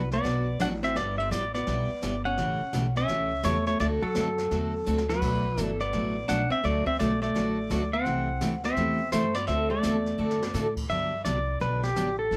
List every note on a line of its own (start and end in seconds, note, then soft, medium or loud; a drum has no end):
0.00 0.24 C2 loud
0.11 0.58 B3 medium
0.11 0.62 D5 medium
0.11 snare soft
0.23 0.59 B1 medium
0.23 0.46 B2 medium
0.23 0.46 F#3 medium
0.23 0.46 B3 medium
0.23 0.46 D4 medium
0.23 0.46 F#4 medium
0.23 brush sweep medium
0.23 snare medium
0.59 0.95 A1 loud
0.59 0.71 B2 medium
0.59 0.72 F#3 medium
0.59 0.72 B3 medium
0.59 0.67 D4 medium
0.59 0.72 D4 medium
0.59 0.72 F#4 medium
0.59 0.68 F#5 loud
0.59 snare medium
0.59 hi-hat pedal medium
0.83 0.96 C4 medium
0.83 0.95 E5 loud
0.83 snare soft
0.95 1.30 G1 medium
0.95 1.17 G3 soft
0.95 1.18 B3 medium
0.95 1.20 B3 medium
0.95 1.18 E4 medium
0.95 1.18 G4 medium
0.95 1.18 D5 loud
0.95 brush sweep soft
0.95 snare soft
1.18 1.33 C4 medium
1.18 1.31 E5 medium
1.31 1.66 A1 medium
1.31 1.43 G3 medium
1.31 1.43 B3 medium
1.31 1.54 B3 medium
1.31 1.43 E4 medium
1.31 1.43 G4 medium
1.31 1.53 D5 medium
1.31 snare medium
1.31 hi-hat pedal medium
1.54 2.21 B3 medium
1.54 2.21 D5 medium
1.54 snare soft
1.67 1.88 B1 medium
1.67 1.89 G3 medium
1.67 1.89 B3 medium
1.67 1.89 E4 medium
1.67 1.89 G4 medium
1.67 brush sweep medium
1.67 snare medium
1.90 muted upright bass stroke soft
2.02 2.37 G1 medium
2.02 2.14 G3 medium
2.02 2.14 B3 medium
2.02 2.14 E4 medium
2.02 2.14 G4 medium
2.02 snare medium
2.02 hi-hat pedal medium
2.25 2.92 C#4 medium
2.25 2.97 F#5 loud
2.37 2.59 A1 medium
2.37 2.60 C#3 medium
2.37 2.60 E3 medium
2.37 2.60 A3 medium
2.37 2.60 C#4 medium
2.37 2.60 G4 medium
2.37 brush sweep soft
2.37 snare soft
2.60 muted upright bass stroke soft
2.73 3.08 B1 loud
2.73 2.85 C#3 medium
2.73 2.85 E3 medium
2.73 2.85 A3 medium
2.73 2.85 C#4 medium
2.73 2.85 G4 medium
2.73 snare medium
2.73 hi-hat pedal medium
2.96 3.41 C#4 medium
2.96 3.46 E5 loud
2.96 snare soft
3.08 3.43 C#2 medium
3.08 3.30 C#3 medium
3.08 3.31 E3 medium
3.08 3.31 A3 medium
3.08 3.31 C#4 medium
3.08 3.31 G4 medium
3.08 brush sweep medium
3.08 snare medium
3.43 3.79 E2 medium
3.43 3.55 C#3 medium
3.43 3.56 E3 medium
3.43 3.56 A3 medium
3.43 3.66 A3 medium
3.43 3.56 C#4 medium
3.43 3.56 G4 medium
3.43 3.66 C#5 loud
3.43 snare medium
3.43 hi-hat pedal medium
3.66 3.79 A3 medium
3.66 3.79 C#5 medium
3.66 snare soft
3.79 4.01 D2 medium
3.79 4.02 D3 medium
3.79 4.02 A3 medium
3.79 3.86 A3 medium
3.79 4.02 C4 medium
3.79 4.02 F#4 medium
3.79 4.02 A4 medium
3.79 3.86 D5 loud
3.79 brush sweep soft
3.79 snare soft
4.02 5.05 F#3 medium
4.02 5.12 A4 medium
4.02 muted upright bass stroke soft
4.15 4.50 F#2 medium
4.15 4.27 D3 medium
4.15 4.27 A3 medium
4.15 4.27 C4 medium
4.15 4.27 F#4 medium
4.15 4.28 A4 medium
4.15 snare medium
4.15 hi-hat pedal medium
4.38 snare soft
4.51 4.86 E2 medium
4.51 4.73 D3 medium
4.51 4.73 A3 medium
4.51 4.73 C4 medium
4.51 4.73 F#4 medium
4.51 4.73 A4 medium
4.51 brush sweep medium
4.51 snare medium
4.86 5.21 D2 medium
4.86 4.98 D3 medium
4.86 4.98 A3 medium
4.86 4.98 C4 medium
4.86 4.99 F#4 medium
4.86 4.99 A4 medium
4.86 hi-hat pedal medium
4.98 snare medium
5.09 5.59 F#3 medium
5.09 5.63 B4 loud
5.09 snare medium
5.21 5.56 B1 medium
5.21 5.43 B2 medium
5.21 5.44 F#3 medium
5.21 5.44 A3 medium
5.21 5.44 D4 soft
5.21 5.44 F#4 medium
5.21 brush sweep soft
5.21 kick medium
5.21 snare soft
5.21 crash medium
5.57 5.92 G1 loud
5.57 5.69 B2 medium
5.57 5.76 E3 medium
5.57 5.69 F#3 medium
5.57 5.69 A3 medium
5.57 5.69 D4 medium
5.57 5.70 F#4 medium
5.57 snare medium
5.57 hi-hat pedal medium
5.63 5.83 A4 loud
5.80 6.26 B3 medium
5.80 6.30 D5 medium
5.80 snare soft
5.93 6.28 A1 medium
5.93 6.15 B2 medium
5.93 6.15 F#3 medium
5.93 6.15 A3 medium
5.93 6.15 D4 medium
5.93 6.15 F#4 medium
5.93 brush sweep medium
5.93 snare soft
6.28 6.50 B1 medium
6.28 6.40 B2 medium
6.28 6.40 F#3 medium
6.28 6.40 A3 medium
6.28 6.49 D4 medium
6.28 6.41 D4 medium
6.28 6.41 F#4 medium
6.28 6.51 F#5 loud
6.28 snare medium
6.28 hi-hat pedal medium
6.50 6.63 C4 medium
6.50 6.65 E5 loud
6.50 muted upright bass stroke soft
6.63 6.85 D2 medium
6.63 6.85 D3 medium
6.63 6.86 F#3 medium
6.63 6.85 A3 medium
6.63 6.86 A3 medium
6.63 6.86 D4 medium
6.63 6.86 F#4 medium
6.63 6.87 D5 loud
6.63 brush sweep soft
6.63 snare soft
6.86 6.98 C4 medium
6.86 6.99 E5 medium
6.86 muted upright bass stroke soft
6.86 kick medium
6.99 7.34 B1 medium
6.99 7.11 D3 medium
6.99 7.11 F#3 medium
6.99 7.21 A3 medium
6.99 7.11 A3 medium
6.99 7.11 D4 medium
6.99 7.12 F#4 medium
6.99 7.21 D5 medium
6.99 snare medium
6.99 hi-hat pedal soft
7.22 7.89 A3 medium
7.22 7.95 D5 medium
7.22 snare soft
7.35 7.70 A1 medium
7.35 7.57 D3 medium
7.35 7.57 F#3 medium
7.35 7.57 A3 medium
7.35 7.57 D4 medium
7.35 7.57 F#4 medium
7.35 brush sweep soft
7.35 snare medium
7.70 8.05 D2 loud
7.70 7.82 D3 medium
7.70 7.82 F#3 medium
7.70 7.82 A3 medium
7.70 7.82 D4 medium
7.70 7.82 F#4 medium
7.70 snare medium
7.70 hi-hat pedal medium
7.93 8.60 C4 medium
7.93 8.65 F#5 loud
8.05 8.41 C2 medium
8.05 8.27 C3 medium
8.05 8.28 E3 medium
8.05 8.28 A3 medium
8.05 8.28 E4 medium
8.05 8.28 G4 medium
8.05 brush sweep soft
8.05 snare soft
8.41 8.76 D2 medium
8.41 8.53 C3 medium
8.41 8.53 E3 medium
8.41 8.53 A3 medium
8.41 8.53 E4 medium
8.41 8.53 G4 medium
8.41 snare medium
8.41 hi-hat pedal medium
8.64 9.09 C4 medium
8.64 9.10 E5 medium
8.64 snare soft
8.76 9.11 E2 medium
8.76 8.99 C3 medium
8.76 8.99 E3 medium
8.76 8.99 A3 medium
8.76 8.99 E4 medium
8.76 8.99 G4 medium
8.76 brush sweep medium
8.76 snare medium
9.12 9.47 G2 medium
9.12 9.24 C3 medium
9.12 9.24 E3 medium
9.12 9.35 A3 medium
9.12 9.24 A3 medium
9.12 9.24 E4 medium
9.12 9.25 G4 medium
9.12 9.36 C5 medium
9.12 snare medium
9.12 hi-hat pedal medium
9.35 9.47 B3 medium
9.35 9.47 D5 medium
9.35 snare soft
9.47 9.82 D2 medium
9.47 9.70 D3 medium
9.47 9.70 A3 medium
9.47 9.69 C4 medium
9.47 9.70 C4 medium
9.47 9.70 F#4 medium
9.47 9.70 A4 medium
9.47 9.70 E5 loud
9.47 brush sweep soft
9.47 snare soft
9.70 10.73 A3 medium
9.70 10.73 D5 medium
9.83 10.18 E2 loud
9.83 9.95 D3 medium
9.83 9.95 A3 medium
9.83 9.95 C4 medium
9.83 9.95 F#4 medium
9.83 9.95 A4 loud
9.83 snare medium
9.83 hi-hat pedal medium
10.06 snare soft
10.18 10.53 F#2 medium
10.18 10.40 D3 medium
10.18 10.40 A3 medium
10.18 10.40 C4 medium
10.18 10.41 F#4 medium
10.18 10.41 A4 medium
10.31 snare medium
10.42 snare medium
10.54 10.89 A2 medium
10.54 10.66 D3 medium
10.54 10.66 A3 medium
10.54 10.66 C4 medium
10.54 10.66 F#4 medium
10.54 10.66 A4 medium
10.54 snare medium
10.54 hi-hat pedal medium
10.77 kick medium
10.77 crash medium
10.89 11.24 G2 medium
10.89 11.12 D3 medium
10.89 11.12 F#3 medium
10.89 11.12 B3 medium
10.89 11.12 D4 medium
10.89 11.12 G4 medium
10.89 11.24 E5 loud
10.89 brush sweep medium
10.89 snare soft
11.25 11.60 C2 medium
11.25 11.37 D3 medium
11.25 11.37 F#3 medium
11.25 11.37 B3 medium
11.25 11.37 D4 medium
11.25 11.38 G4 medium
11.25 11.58 D5 medium
11.25 snare medium
11.25 hi-hat pedal medium
11.60 11.95 B1 medium
11.60 11.82 D3 medium
11.60 11.82 F#3 medium
11.60 11.83 B3 medium
11.60 11.83 D4 medium
11.60 11.83 G4 medium
11.60 11.82 B4 medium
11.60 brush sweep soft
11.60 snare soft
11.83 12.18 G4 medium
11.83 snare medium
11.96 12.31 A1 medium
11.96 12.08 D3 medium
11.96 12.08 F#3 medium
11.96 12.08 B3 medium
11.96 12.08 D4 medium
11.96 12.08 G4 medium
11.96 snare medium
11.96 hi-hat pedal medium
12.19 12.37 A4 medium
12.31 12.37 G1 medium
12.31 12.37 G3 medium
12.31 12.37 C4 medium
12.31 12.37 E4 medium
12.31 12.37 A4 medium
12.31 brush sweep soft
12.31 snare soft